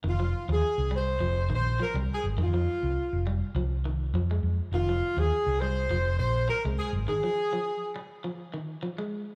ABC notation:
X:1
M:4/4
L:1/16
Q:1/4=102
K:Fm
V:1 name="Horn section"
F3 A3 c4 c2 B2 A2 | F6 z8 z2 | F3 A3 c4 c2 B2 A2 | A6 z8 z2 |]
V:2 name="Clean electric guitar" clef=bass
E, F,2 F,2 z G,2 F,2 E,2 F, G,2 z | E, F,2 z3 G,2 F,2 E,2 F, A,2 z | E, F,2 F,2 z G,2 F,2 z3 A,2 z | E, F,2 F,2 z3 F,2 E,2 F, A,2 z |]
V:3 name="Fingered electric bass" clef=bass
F,,,2 z E,, z C,,3 F,,,2 B,,,2 z C,, z A,,, | F,,2 z C,, z F,,,2 z C,,4 F,,2 F,, z | F,,,2 z E,, z C,,3 F,,,2 B,,,2 z C,, z A,,, | z16 |]